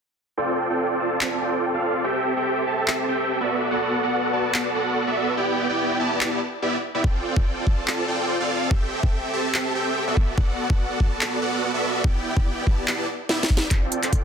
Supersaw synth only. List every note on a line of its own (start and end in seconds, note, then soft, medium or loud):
0.37 0.67 C4 loud
0.37 0.67 F4 medium
0.37 0.67 A4 medium
0.37 0.67 D5 medium
0.37 0.67 G5 loud
0.70 0.98 C4 medium
0.70 0.98 F4 medium
0.70 0.98 A4 medium
0.70 0.98 D5 medium
0.70 0.98 G5 loud
1.00 1.19 C4 medium
1.00 1.19 F4 medium
1.00 1.19 A4 medium
1.00 1.19 D5 medium
1.00 1.19 A5 loud
1.21 1.40 C4 medium
1.21 1.40 F4 medium
1.21 1.40 A4 medium
1.21 1.39 D5 medium
1.21 1.40 A5 medium
1.42 1.71 C4 medium
1.42 1.71 F4 medium
1.42 1.71 A4 medium
1.42 1.71 D5 medium
1.42 1.71 G5 medium
1.74 2.02 C4 medium
1.74 2.02 F4 medium
1.74 2.02 A4 medium
1.74 2.02 D5 medium
1.74 2.02 F5 medium
2.04 2.34 C4 loud
2.04 2.34 G4 medium
2.04 2.34 A4 medium
2.04 2.34 E5 medium
2.04 2.34 G5 loud
2.37 2.65 C4 medium
2.37 2.65 G4 medium
2.37 2.65 A4 medium
2.37 2.65 E5 medium
2.37 2.65 G5 loud
2.67 2.85 C4 medium
2.67 2.85 G4 medium
2.67 2.85 A4 medium
2.67 2.85 E5 medium
2.67 2.85 A5 loud
2.88 3.06 C4 medium
2.88 3.06 G4 medium
2.88 3.06 A4 medium
2.88 3.06 E5 medium
2.88 3.06 A5 medium
3.08 3.38 C4 medium
3.08 3.38 G4 medium
3.08 3.38 A4 medium
3.08 3.38 E5 medium
3.08 3.38 G5 loud
3.41 3.69 B3 medium
3.41 3.69 F#4 medium
3.41 3.69 A4 medium
3.41 3.69 D5 medium
3.41 3.69 E5 medium
3.71 4.00 B3 loud
3.71 4.00 F#4 loud
3.71 4.00 A4 medium
3.71 4.00 D5 medium
3.71 4.00 F#5 loud
4.03 4.31 B3 medium
4.03 4.31 F#4 medium
4.03 4.31 A4 medium
4.03 4.31 D5 medium
4.03 4.31 F#5 loud
4.33 4.52 B3 medium
4.33 4.52 F#4 medium
4.33 4.52 A4 medium
4.33 4.52 D5 medium
4.33 4.52 A5 loud
4.54 4.73 B3 medium
4.54 4.73 F#4 medium
4.54 4.73 A4 medium
4.54 4.73 D5 medium
4.54 4.73 A5 medium
4.75 5.05 B3 medium
4.75 5.05 F#4 medium
4.75 5.05 A4 medium
4.75 5.05 D5 medium
4.75 5.05 F#5 loud
5.07 5.35 B3 medium
5.07 5.35 F#4 medium
5.07 5.35 A4 medium
5.07 5.35 D5 medium
5.07 5.35 E5 medium
5.37 5.67 B3 loud
5.37 5.67 E4 medium
5.37 5.67 G4 medium
5.37 5.67 D5 medium
5.37 5.67 G5 loud
5.70 5.98 B3 medium
5.70 5.98 E4 medium
5.70 5.98 G4 medium
5.70 5.98 D5 medium
5.70 5.98 G5 loud
6.00 6.19 B3 medium
6.00 6.19 E4 medium
6.00 6.19 G4 medium
6.00 6.18 D5 medium
6.00 6.19 A5 loud
6.21 6.39 B3 medium
6.21 6.39 E4 medium
6.21 6.39 G4 medium
6.21 6.39 D5 medium
6.21 6.39 A5 medium
6.62 6.76 B3 medium
6.62 6.76 E4 medium
6.62 6.76 G4 medium
6.62 6.76 D5 medium
6.62 6.76 E5 medium
6.95 7.02 B3 medium
6.95 7.02 E4 medium
6.95 7.02 G4 medium
6.95 7.02 D5 medium
6.95 7.02 E5 medium
7.04 7.34 C4 loud
7.04 7.34 F4 medium
7.04 7.34 A4 loud
7.04 7.34 D5 medium
7.04 7.34 G5 loud
7.36 7.64 C4 medium
7.36 7.64 F4 medium
7.36 7.64 A4 medium
7.36 7.64 D5 medium
7.36 7.64 G5 loud
7.67 7.85 C4 medium
7.67 7.85 F4 medium
7.67 7.85 A4 medium
7.67 7.85 D5 medium
7.67 7.85 A5 loud
7.87 8.06 C4 medium
7.87 8.06 F4 medium
7.87 8.06 A4 medium
7.87 8.06 D5 medium
7.87 8.06 A5 medium
8.08 8.38 C4 medium
8.08 8.38 F4 medium
8.08 8.38 A4 medium
8.08 8.38 D5 medium
8.08 8.38 G5 loud
8.40 8.69 C4 medium
8.40 8.69 F4 medium
8.40 8.69 A4 medium
8.40 8.69 D5 medium
8.40 8.69 F5 medium
8.71 9.00 C4 loud
8.71 9.00 G4 medium
8.71 9.00 A4 medium
8.71 9.00 E5 medium
8.71 9.00 G5 loud
9.03 9.31 C4 medium
9.03 9.31 G4 medium
9.03 9.31 A4 medium
9.03 9.31 E5 medium
9.03 9.31 G5 loud
9.33 9.52 C4 medium
9.33 9.52 G4 medium
9.33 9.52 A4 medium
9.33 9.52 E5 medium
9.33 9.52 A5 loud
9.54 9.73 C4 medium
9.54 9.73 G4 medium
9.54 9.73 A4 medium
9.54 9.73 E5 medium
9.54 9.73 A5 medium
9.75 10.05 C4 medium
9.75 10.05 G4 medium
9.75 10.05 A4 medium
9.75 10.05 E5 medium
9.75 10.05 G5 loud
10.07 10.35 B3 medium
10.07 10.35 F#4 medium
10.07 10.35 A4 medium
10.07 10.35 D5 medium
10.07 10.35 E5 medium
10.38 10.67 B3 loud
10.38 10.67 F#4 medium
10.38 10.67 A4 medium
10.38 10.67 D5 medium
10.38 10.67 F#5 loud
10.70 10.98 B3 medium
10.70 10.98 F#4 medium
10.70 10.98 A4 medium
10.70 10.98 D5 medium
10.70 10.98 F#5 loud
11.00 11.19 B3 loud
11.00 11.19 F#4 medium
11.00 11.19 A4 medium
11.00 11.19 D5 medium
11.00 11.19 A5 loud
11.21 11.40 B3 medium
11.21 11.40 F#4 medium
11.21 11.40 A4 medium
11.21 11.40 D5 medium
11.21 11.40 A5 medium
11.42 11.71 B3 medium
11.42 11.71 F#4 medium
11.42 11.71 A4 medium
11.42 11.71 D5 medium
11.42 11.71 F#5 medium
11.74 12.02 B3 medium
11.74 12.02 F#4 medium
11.74 12.02 A4 medium
11.74 12.02 D5 medium
11.74 12.02 E5 medium
12.04 12.34 B3 loud
12.04 12.34 E4 loud
12.04 12.34 G4 medium
12.04 12.34 D5 medium
12.04 12.34 G5 loud
12.36 12.64 B3 medium
12.36 12.64 E4 medium
12.36 12.64 G4 medium
12.36 12.64 D5 medium
12.36 12.64 G5 loud
12.67 12.85 B3 medium
12.67 12.85 E4 medium
12.67 12.85 G4 medium
12.67 12.85 D5 medium
12.67 12.85 A5 loud
12.88 13.06 B3 medium
12.88 13.06 E4 medium
12.88 13.06 G4 medium
12.88 13.06 D5 medium
12.88 13.06 A5 loud
13.29 13.43 B3 medium
13.29 13.43 E4 medium
13.29 13.43 G4 medium
13.29 13.43 D5 medium
13.29 13.43 E5 loud
13.62 13.69 B3 medium
13.62 13.69 E4 medium
13.62 13.69 G4 medium
13.62 13.69 D5 medium
13.62 13.69 E5 medium
13.71 14.00 C4 loud
13.71 14.00 F4 medium
13.71 14.00 A4 medium
13.71 14.00 D5 medium
13.71 14.00 G5 loud
14.03 14.24 C4 medium
14.03 14.24 F4 medium
14.03 14.24 A4 medium
14.03 14.24 D5 medium
14.03 14.24 G5 loud